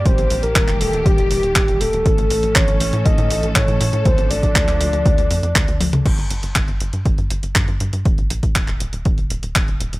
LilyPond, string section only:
\new Staff \with { instrumentName = "String section" } { \time 4/4 \key ees \lydian \tempo 4 = 120 << { <g g'>1 | <a a'>1~ | <a a'>1 | r1 |
r1 | } \\ { <ees bes>1 | <e cis'>1 | <f d'>1 | r1 |
r1 | } >> }